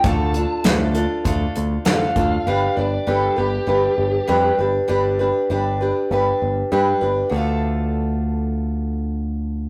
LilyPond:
<<
  \new Staff \with { instrumentName = "Lead electric guitar" } { \time 4/4 \key d \dorian \tempo 4 = 99 a''4 r2 f''4 | f''8 d''8 a'8 g'2 r8 | r1 | r1 | }
  \new Staff \with { instrumentName = "Steel-string acoustic guitar" } { \time 4/4 \key d \dorian <d a d' f' a'>8 <d' f' a'>8 <d a d' f' a'>8 <d' f' a'>8 <a d' f' a'>4 <d a d' f' a'>8 <d' f' a'>8 | <g d' g' b'>8 <d' g' b'>8 <g d' g' b'>8 <d' g' b'>8 <g d' g' b'>4 <g d' g' b'>8 <d' g' b'>8 | <g d' g' b'>8 <d' g' b'>8 <g d' g' b'>8 <d' g' b'>8 <g d' g' b'>4 <g d' g' b'>8 <d' g' b'>8 | <d a d' f' a'>1 | }
  \new Staff \with { instrumentName = "Picked electric bass" } { \clef bass \time 4/4 \key d \dorian d,4 d,4 d,8 d,8 d8 d,8 | g,,8 g,,8 g,,8 g,,8 g,,8 g,,8 f,8 g,,8 | g,,4 g,,4 g,,8 g,,8 g,8 g,,8 | d,1 | }
  \new DrumStaff \with { instrumentName = "Drums" } \drummode { \time 4/4 <hh bd>8 hh8 <hh sn>8 hh8 <hh bd>8 hh8 <hh sn>8 <hh bd>8 | r4 r4 r4 r4 | r4 r4 r4 r4 | r4 r4 r4 r4 | }
>>